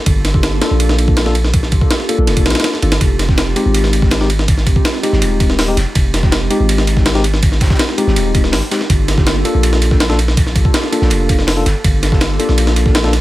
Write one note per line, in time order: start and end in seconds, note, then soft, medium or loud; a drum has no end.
0.06 0.60 G1 loud
0.06 0.59 A#3 medium
0.06 0.60 D4 medium
0.06 0.60 F4 medium
0.06 0.60 G4 medium
0.06 0.60 A4 medium
0.06 kick loud
0.06 ride medium
0.25 snare medium
0.25 ride medium
0.34 kick medium
0.43 snare loud
0.43 ride medium
0.62 0.68 A#3 medium
0.62 1.24 A#3 loud
0.62 0.68 D4 medium
0.62 1.24 D4 medium
0.62 0.68 F4 medium
0.62 1.24 F4 medium
0.62 0.68 G4 medium
0.62 0.68 A4 loud
0.62 1.24 A4 loud
0.62 snare loud
0.62 ride medium
0.71 1.80 A#1 medium
0.80 ride medium
0.89 snare medium
0.99 ride medium
1.08 kick loud
1.17 snare loud
1.17 ride medium
1.26 1.35 A#3 medium
1.26 1.34 D4 medium
1.26 1.34 F4 medium
1.26 1.35 A4 loud
1.26 snare medium
1.35 ride medium
1.44 snare medium
1.54 2.07 A#3 medium
1.54 2.07 D4 medium
1.54 2.07 F4 medium
1.54 2.07 G4 medium
1.54 2.07 A4 medium
1.54 kick loud
1.54 ride medium
1.63 snare soft
1.72 kick loud
1.72 ride medium
1.81 kick loud
1.91 snare loud
1.91 ride medium
2.00 snare soft
2.09 2.15 A#3 medium
2.09 2.71 A#3 loud
2.09 2.71 D4 medium
2.09 2.15 D4 medium
2.09 2.71 F4 medium
2.09 2.15 F4 medium
2.09 2.15 G4 medium
2.09 2.71 A4 loud
2.09 2.15 A4 loud
2.09 ride medium
2.18 2.29 A#1 medium
2.27 2.47 F1 medium
2.27 snare soft
2.27 ride medium
2.37 kick loud
2.37 ride medium
2.46 2.54 A#1 medium
2.46 2.52 A#3 medium
2.46 2.52 D4 medium
2.46 2.52 F4 medium
2.46 2.52 G4 medium
2.46 2.52 A4 loud
2.46 snare medium
2.46 ride medium
2.50 snare medium
2.50 ride medium
2.55 snare medium
2.55 ride medium
2.60 snare medium
2.60 ride medium
2.64 snare loud
2.64 ride medium
2.74 2.99 A#3 medium
2.74 2.99 D4 medium
2.74 2.99 F4 medium
2.74 2.99 G4 medium
2.74 2.99 A4 loud
2.74 snare soft
2.82 2.99 G1 medium
2.82 2.91 A#3 medium
2.82 2.91 D4 medium
2.82 2.91 F4 medium
2.82 2.91 A4 medium
2.82 ride medium
2.92 snare loud
2.92 ride medium
3.01 3.55 F1 loud
3.01 3.54 G#3 medium
3.01 3.54 C4 medium
3.01 3.54 D#4 medium
3.01 3.54 F4 medium
3.01 3.54 G4 medium
3.01 kick loud
3.01 closed hi-hat medium
3.01 ride medium
3.19 snare medium
3.19 closed hi-hat medium
3.19 ride medium
3.29 kick loud
3.29 snare soft
3.38 snare loud
3.38 closed hi-hat medium
3.38 ride medium
3.56 3.62 G#3 medium
3.56 4.18 G#3 loud
3.56 3.62 C4 medium
3.56 4.18 C4 medium
3.56 3.62 D#4 medium
3.56 4.18 D#4 medium
3.56 3.62 F4 medium
3.56 3.62 G4 loud
3.56 4.18 G4 loud
3.56 closed hi-hat medium
3.56 ride medium
3.66 4.75 G#1 medium
3.74 closed hi-hat medium
3.74 ride medium
3.84 snare medium
3.84 closed hi-hat soft
3.93 closed hi-hat medium
3.93 ride medium
4.02 kick loud
4.02 snare soft
4.11 snare loud
4.11 closed hi-hat medium
4.11 ride medium
4.21 4.29 G#3 medium
4.21 4.29 C4 medium
4.21 4.29 D#4 medium
4.21 4.29 G4 loud
4.21 snare medium
4.21 snare soft
4.30 closed hi-hat medium
4.30 ride medium
4.39 snare medium
4.48 5.01 G#3 medium
4.48 5.01 C4 medium
4.48 5.01 D#4 medium
4.48 5.01 F4 medium
4.48 5.01 G4 medium
4.48 kick loud
4.48 closed hi-hat medium
4.48 ride medium
4.58 snare soft
4.67 kick loud
4.67 closed hi-hat medium
4.67 ride medium
4.76 kick loud
4.85 snare loud
4.85 closed hi-hat medium
4.85 ride medium
4.94 snare soft
5.03 5.66 G#3 loud
5.03 5.10 G#3 medium
5.03 5.66 C4 medium
5.03 5.10 C4 medium
5.03 5.66 D#4 medium
5.03 5.10 D#4 medium
5.03 5.10 F4 medium
5.03 5.66 G4 loud
5.03 5.10 G4 loud
5.03 closed hi-hat medium
5.03 ride medium
5.13 5.23 G#1 medium
5.13 snare medium
5.22 5.76 D#1 medium
5.22 closed hi-hat medium
5.22 ride medium
5.40 kick medium
5.40 closed hi-hat medium
5.40 ride medium
5.50 snare soft
5.59 snare loud
5.59 closed hi-hat medium
5.59 open hi-hat medium
5.68 5.76 G#3 medium
5.68 5.76 C4 medium
5.68 5.76 D#4 medium
5.68 5.76 G4 loud
5.77 5.85 F1 loud
5.77 snare medium
5.77 closed hi-hat medium
5.77 ride medium
5.95 6.49 F1 loud
5.95 6.48 G#3 medium
5.95 6.48 C4 medium
5.95 6.49 D#4 medium
5.95 6.48 F4 medium
5.95 6.49 G4 medium
5.95 kick loud
5.95 closed hi-hat medium
5.95 ride medium
6.14 snare medium
6.14 closed hi-hat medium
6.14 ride medium
6.23 kick loud
6.23 snare soft
6.32 snare loud
6.32 closed hi-hat medium
6.32 ride medium
6.50 6.57 G#3 medium
6.50 7.13 G#3 loud
6.50 7.13 C4 medium
6.50 6.57 C4 medium
6.50 6.57 D#4 medium
6.50 7.13 D#4 medium
6.50 6.57 F4 medium
6.50 6.57 G4 loud
6.50 7.13 G4 loud
6.50 closed hi-hat medium
6.50 ride medium
6.60 7.69 G#1 medium
6.69 closed hi-hat medium
6.69 ride medium
6.78 snare medium
6.78 closed hi-hat soft
6.87 closed hi-hat medium
6.87 ride medium
6.97 kick medium
6.97 snare soft
7.05 snare loud
7.05 closed hi-hat medium
7.05 ride medium
7.14 7.23 G#3 medium
7.14 7.23 C4 medium
7.14 7.23 D#4 medium
7.14 7.23 G4 loud
7.14 snare soft
7.14 snare medium
7.24 closed hi-hat medium
7.24 ride medium
7.34 snare medium
7.43 7.96 G#3 medium
7.43 7.96 C4 medium
7.43 7.96 D#4 medium
7.43 7.96 F4 medium
7.43 7.96 G4 medium
7.43 kick loud
7.43 closed hi-hat loud
7.43 ride medium
7.52 snare soft
7.60 kick loud
7.60 snare medium
7.60 closed hi-hat medium
7.60 ride medium
7.66 snare medium
7.66 closed hi-hat medium
7.70 kick loud
7.70 snare medium
7.70 closed hi-hat medium
7.75 snare medium
7.75 closed hi-hat medium
7.79 snare loud
7.79 closed hi-hat medium
7.79 ride medium
7.89 snare soft
7.98 8.60 G#3 loud
7.98 8.04 G#3 medium
7.98 8.60 C4 medium
7.98 8.04 C4 medium
7.98 8.60 D#4 medium
7.98 8.04 D#4 medium
7.98 8.04 F4 medium
7.98 8.60 G4 loud
7.98 8.04 G4 loud
7.98 closed hi-hat medium
7.98 ride medium
8.07 8.18 G#1 medium
8.07 snare soft
8.16 8.55 D#1 medium
8.16 closed hi-hat medium
8.16 ride medium
8.34 8.41 G#3 medium
8.34 8.41 C4 medium
8.34 8.41 D#4 medium
8.34 8.41 F4 medium
8.34 8.41 G4 loud
8.34 kick loud
8.34 closed hi-hat medium
8.34 ride medium
8.44 snare soft
8.52 8.62 G#1 medium
8.52 snare loud
8.52 closed hi-hat medium
8.52 open hi-hat medium
8.62 8.88 G#3 medium
8.62 8.88 C4 medium
8.62 8.88 D#4 medium
8.62 8.88 F4 medium
8.62 8.88 G4 loud
8.71 8.80 G#3 medium
8.71 8.80 C4 medium
8.71 8.80 D#4 medium
8.71 8.80 G4 medium
8.71 snare loud
8.71 closed hi-hat medium
8.71 ride medium
8.81 snare soft
8.89 9.44 G1 loud
8.89 9.43 A#3 medium
8.89 9.43 D4 medium
8.89 9.43 F4 medium
8.89 9.43 G4 medium
8.89 9.43 A4 medium
8.89 kick loud
8.89 closed hi-hat medium
8.89 ride medium
9.08 snare medium
9.08 closed hi-hat medium
9.08 ride medium
9.18 kick loud
9.18 snare medium
9.27 snare loud
9.27 closed hi-hat medium
9.27 ride medium
9.45 9.51 A#3 medium
9.45 10.07 A#3 medium
9.45 9.51 D4 medium
9.45 10.07 D4 medium
9.45 9.51 F4 medium
9.45 10.07 F4 medium
9.45 9.51 G4 medium
9.45 9.51 A4 loud
9.45 10.07 A4 loud
9.45 closed hi-hat medium
9.45 ride medium
9.55 10.63 A#1 medium
9.63 closed hi-hat medium
9.63 ride medium
9.73 snare medium
9.73 closed hi-hat soft
9.82 closed hi-hat medium
9.82 ride medium
9.91 kick medium
9.91 snare soft
10.00 snare loud
10.00 closed hi-hat medium
10.00 ride medium
10.10 10.18 A#3 medium
10.10 10.18 D4 medium
10.10 10.18 F4 medium
10.10 10.18 A4 loud
10.10 snare medium
10.19 closed hi-hat medium
10.19 ride medium
10.28 snare medium
10.37 10.90 A#3 medium
10.37 10.90 D4 medium
10.37 10.90 F4 medium
10.37 10.90 G4 medium
10.37 10.90 A4 medium
10.37 kick loud
10.37 closed hi-hat medium
10.37 ride medium
10.47 snare soft
10.56 kick loud
10.56 closed hi-hat medium
10.56 ride medium
10.65 kick loud
10.74 snare loud
10.74 closed hi-hat medium
10.74 ride medium
10.83 snare soft
10.92 11.55 A#3 loud
10.92 10.99 A#3 medium
10.92 11.55 D4 medium
10.92 10.99 D4 medium
10.92 11.55 F4 medium
10.92 10.99 F4 medium
10.92 10.99 G4 medium
10.92 11.55 A4 loud
10.92 10.99 A4 loud
10.92 closed hi-hat medium
10.92 ride medium
11.02 11.12 A#1 medium
11.02 snare medium
11.10 11.65 F1 medium
11.10 closed hi-hat medium
11.10 ride medium
11.29 kick loud
11.29 closed hi-hat medium
11.29 ride medium
11.39 snare soft
11.47 snare loud
11.47 closed hi-hat medium
11.47 open hi-hat medium
11.57 11.65 A#3 medium
11.57 11.65 D4 medium
11.57 11.65 F4 medium
11.57 11.65 A4 loud
11.66 11.74 G1 loud
11.66 snare medium
11.66 closed hi-hat medium
11.66 ride medium
11.84 12.38 G1 loud
11.84 12.38 A#3 medium
11.84 12.38 D4 medium
11.84 12.38 F4 medium
11.84 12.38 G4 medium
11.84 12.38 A4 medium
11.84 kick loud
11.84 closed hi-hat medium
11.84 ride medium
12.03 snare medium
12.03 closed hi-hat medium
12.03 ride medium
12.12 kick loud
12.12 snare soft
12.21 snare loud
12.21 closed hi-hat medium
12.21 ride medium
12.39 13.02 A#3 loud
12.39 12.46 A#3 medium
12.39 13.02 D4 medium
12.39 12.46 D4 medium
12.39 13.02 F4 medium
12.39 12.46 F4 medium
12.39 12.46 G4 medium
12.39 13.02 A4 loud
12.39 12.46 A4 loud
12.39 closed hi-hat medium
12.39 ride medium
12.49 13.21 A#1 medium
12.49 snare soft
12.58 closed hi-hat loud
12.58 ride medium
12.67 snare medium
12.67 closed hi-hat soft
12.76 closed hi-hat medium
12.76 ride medium
12.86 kick loud
12.86 snare soft
12.95 snare loud
12.95 closed hi-hat medium
12.95 ride medium
13.04 13.12 A#3 medium
13.04 13.12 D4 medium
13.04 13.12 F4 medium
13.04 13.12 A4 loud
13.04 snare medium
13.04 snare soft
13.13 snare soft
13.13 closed hi-hat medium
13.13 ride medium